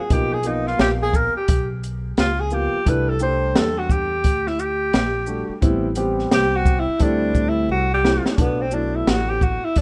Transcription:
0.00 tenor saxophone G#4
0.09 upright bass B1, grand piano F3 A#3 B3 D#4, tenor saxophone G4, kick, closed hi-hat
0.33 tenor saxophone G#4
0.43 grand piano F3 A#3 B3 F4, tenor saxophone D#4, closed hi-hat, shaker
0.67 tenor saxophone F4, snare
0.79 upright bass A#1, tenor saxophone G4, snare, closed hi-hat
1.02 tenor saxophone G#4
1.14 tenor saxophone A#4, kick, shaker
1.35 tenor saxophone G4, muted upright bass stroke
1.48 upright bass B1, kick, closed hi-hat
1.84 closed hi-hat, shaker
2.17 upright bass C#2, tenor saxophone F4, snare, closed hi-hat
2.40 tenor saxophone G#4
2.50 grand piano F3 A#3 B3 F4, tenor saxophone G4, shaker
2.73 muted upright bass stroke
2.85 upright bass C2, grand piano G3 A3 D4 E4, tenor saxophone B4, kick, closed hi-hat
3.09 tenor saxophone A4
3.19 grand piano G3 A3 D4 G4, tenor saxophone C5, shaker
3.55 upright bass E2, tenor saxophone A4, snare, closed hi-hat
3.78 tenor saxophone F#4
3.90 tenor saxophone G4, kick, shaker
4.24 upright bass D2, kick, closed hi-hat
4.47 tenor saxophone E4, snare
4.59 tenor saxophone G4, shaker
4.93 upright bass A#1, snare, closed hi-hat
5.26 grand piano G3 A3 D4 F#4, shaker
5.49 muted upright bass stroke
5.61 upright bass A1, grand piano G3 B3 C4 E4, kick, closed hi-hat
5.95 grand piano G3 B3 C4 G4, closed hi-hat, shaker
6.19 snare
6.31 upright bass C2, tenor saxophone G4, snare, closed hi-hat
6.56 tenor saxophone F#4
6.65 kick, shaker
6.79 tenor saxophone E4
6.87 muted upright bass stroke
6.99 upright bass D2, grand piano G3 A3 C4 E4, tenor saxophone D4, kick, closed hi-hat
7.35 kick, shaker
7.49 tenor saxophone E4
7.69 upright bass C2, tenor saxophone F#4
7.94 tenor saxophone G4
8.03 grand piano G3 A3 C4 E4, snare
8.26 snare
8.37 upright bass B1, grand piano F#3 A3 B3 D4, tenor saxophone B3, kick, closed hi-hat
8.61 tenor saxophone C4
8.71 grand piano F#3 A3 B3 E4, tenor saxophone D4, shaker
8.96 tenor saxophone E4
9.07 upright bass A1, tenor saxophone F#4, snare, closed hi-hat
9.30 tenor saxophone G4
9.41 tenor saxophone F#4, kick, shaker
9.65 tenor saxophone E4
9.76 upright bass A1, tenor saxophone D4, kick, closed hi-hat

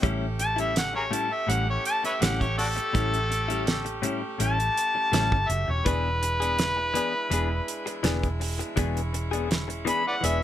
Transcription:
0.02 fingered electric bass A1, clean electric guitar A2 G3 C#4 E4, horn section A3 C#4 G4, kick, closed hi-hat
0.39 harmonica A5, muted clean electric guitar stroke, closed hi-hat
0.56 clean electric guitar G3 C#4 E4, closed hi-hat
0.60 harmonica E5
0.75 harmonica F#5, muted clean electric guitar stroke, snare, closed hi-hat
0.93 harmonica G#4 A#4 C#5, muted clean electric guitar stroke
1.11 clean electric guitar A2 G3 C#4 E4, harmonica A5, closed hi-hat
1.30 harmonica E5, muted clean electric guitar stroke
1.47 fingered electric bass A1, clean electric guitar A2 G3 C#4 E4, harmonica F#5, closed hi-hat
1.67 harmonica C#5, muted clean electric guitar stroke
1.85 harmonica A5, closed hi-hat
2.03 harmonica B4 C#5 E5, muted clean electric guitar stroke, closed hi-hat
2.21 fingered electric bass A1, clean electric guitar A2 G3 C#4 E4, harmonica F#5, snare, closed hi-hat
2.41 harmonica C#5, kick, closed hi-hat
2.57 harmonica D4 F#4 A4, muted clean electric guitar stroke, open hi-hat
2.76 muted clean electric guitar stroke, closed hi-hat
2.93 fingered electric bass A1, clean electric guitar A2 G3 C#4 E4, kick, closed hi-hat
3.14 closed hi-hat
3.30 muted clean electric guitar stroke, closed hi-hat
3.48 clean electric guitar G3 C#4 E4, closed hi-hat
3.66 muted clean electric guitar stroke, snare, closed hi-hat
3.85 muted clean electric guitar stroke, closed hi-hat
4.02 clean electric guitar A2 G3 C#4 E4, closed hi-hat
4.22 muted clean electric guitar stroke
4.38 fingered electric bass A1, clean electric guitar A2 G3 C#4 E4, harmonica A5, closed hi-hat
4.58 muted clean electric guitar stroke, closed hi-hat
4.78 closed hi-hat
4.95 muted clean electric guitar stroke
5.12 fingered electric bass A1, clean electric guitar A2 G3 C#4 E4, snare, closed hi-hat
5.32 fingered electric bass G1, kick
5.49 fingered electric bass F#1, harmonica E5, muted clean electric guitar stroke, closed hi-hat
5.68 fingered electric bass E1, harmonica C#5, muted clean electric guitar stroke
5.85 fingered electric bass E1, clean electric guitar E3 B3 D4 G#4, horn section G#3 D4 E4, harmonica B4, kick, closed hi-hat
6.22 muted clean electric guitar stroke, closed hi-hat
6.40 clean electric guitar B3 D4 G#4, closed hi-hat
6.58 muted clean electric guitar stroke, snare, closed hi-hat
6.77 muted clean electric guitar stroke
6.94 clean electric guitar E3 B3 D4 G#4, closed hi-hat
7.14 muted clean electric guitar stroke
7.30 fingered electric bass E1, clean electric guitar E3 B3 D4 G#4, closed hi-hat
7.50 muted clean electric guitar stroke
7.68 closed hi-hat
7.86 muted clean electric guitar stroke, closed hi-hat
8.03 fingered electric bass E1, clean electric guitar E3 B3 D4 G#4, snare, closed hi-hat
8.23 kick, closed hi-hat
8.40 muted clean electric guitar stroke, open hi-hat
8.59 muted clean electric guitar stroke, closed hi-hat
8.76 fingered electric bass E1, clean electric guitar E3 B3 D4 G#4, horn section C#4, kick, closed hi-hat
8.97 closed hi-hat
9.13 muted clean electric guitar stroke, closed hi-hat
9.31 clean electric guitar B3 D4 G#4, closed hi-hat
9.49 muted clean electric guitar stroke, snare, closed hi-hat
9.68 muted clean electric guitar stroke, closed hi-hat
9.85 clean electric guitar E3 B3 D4 G#4, harmonica B5, closed hi-hat
10.04 harmonica B4 D5 F#5, muted clean electric guitar stroke
10.21 fingered electric bass E1, clean electric guitar E3 B3 D4 G#4, closed hi-hat
10.25 harmonica E5

